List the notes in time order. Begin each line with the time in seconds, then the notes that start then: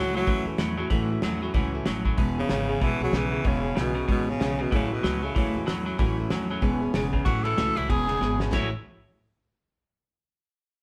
Already playing: C#2 A2 F#3 A3 C#4 F#4
0.13 A2 F#3 A3 C#4 F#4
0.26 E2 A2 E3 F#3 A3 C#4 F#4, kick, open hi-hat
0.45 E2 F#3 A3 C#4 F#4
0.58 E2 A2 F#3 A3 C#4 F#4, snare, open hi-hat
0.78 A2 F#3 A3 C#4 F#4
0.90 A1 A2 E3 F#3 A3 C#4 F#4, kick, open hi-hat
1.10 F#3 A3 C#4 F#4
1.22 E2 A2 F#3 A3 C#4 F#4, snare, open hi-hat
1.42 A2 F#3 A3 C#4 F#4
1.54 C#2 A2 E3 F#3 A3 C#4 F#4, kick, open hi-hat
1.74 F#3 A3 C#4 F#4
1.85 A1 A2 F#3 A3 C#4 F#4, snare, open hi-hat
2.05 A2 F#3 A3 C#4 F#4, kick
2.17 E1 E2 B2 E3 G#3 B3 C#4 G#4, kick, open hi-hat
2.38 C#3 B3 C#4 G#4
2.49 G#1 E2 C#3 G#3 B3 C#4 G#4, snare, open hi-hat
2.69 E2 C#3 B3 C#4 G#4
2.81 B1 E2 B2 E3 G#3 B3 C#4 G#4, kick, open hi-hat
3.00 B1 B3 C#4 G#4
3.04 F#3
3.12 B1 E2 C#3 G#3 B3 C#4, snare, open hi-hat
3.16 E3 G#4
3.31 E2 C#3 B3 C#4 G#4
3.44 E1 E2 B2 C#3 E3 G#3 B3 C#4 G#4, kick, open hi-hat
3.63 B3 C#4 G#4
3.75 B1 E2 C#3 G#3 B3 C#4 G#4, snare, open hi-hat
3.80 B2
3.94 E2 C#3 B3 C#4 G#4
4.08 G#1 E2 B2 E3 G#3 B3 C#4 G#4, kick, open hi-hat
4.27 C#3 B3 C#4 G#4
4.40 B1 E2 C#3 G#3 B3 C#4 G#4, snare, open hi-hat
4.58 E2 B2 C#3 B3 C#4 G#4
4.71 A1 A2 C#3 E3 F#3 A3 C#4 F#4, kick, open hi-hat
4.91 B2 F#3 A3 C#4 F#4
5.03 C#2 A2 F#3 A3 C#4 F#4, snare, open hi-hat
5.22 A2 C#3 F#3 A3 C#4 F#4
5.35 E2 A2 C#3 E3 F#3 A3 C#4 F#4, kick, open hi-hat
5.55 E2 F#3 A3 C#4 F#4
5.66 E2 A2 F#3 A3 C#4 F#4, snare, open hi-hat
5.85 A2 F#3 A3 C#4 F#4
5.98 A1 A2 E3 F#3 A3 C#4 F#4, kick, open hi-hat
6.18 F#3 A3 C#4 F#4
6.30 E2 A2 F#3 A3 C#4 F#4, snare, open hi-hat
6.49 A2 F#3 A3 C#4 F#4
6.61 E1 E2 B2 E3 G#3 B3 C#4 G#4, kick, open hi-hat
6.81 B3 C#4 G#4
6.94 E1 E2 C#3 G#3 B3 C#4 G#4, snare, open hi-hat
7.13 E2 C#3 B3 C#4 G#4, kick
7.25 A1 A2 E3 F#3 A3 C#4 F#4, kick, ride
7.43 A2 E3 F#3 A3 C#4 F#4 A4, ride
7.57 C#2 A2 E3 F#3 A3 C#4 F#4, snare, ride
7.76 C#2 A2 E3 F#3 A3 C#4 E4 F#4, ride
7.89 E1 E2 B2 E3 G#3 B3 C#4 G#4, kick, ride
8.08 E2 C#3 B3 C#4 G#4, ride
8.21 G#1 E2 B2 G#3 B3 C#4 G#4, snare
8.40 E2 B2 B3 C#4 G#4, snare
8.52 A1 A2 E3 F#3 A3 C#4 E4 F#4 C#5, kick, snare, ride bell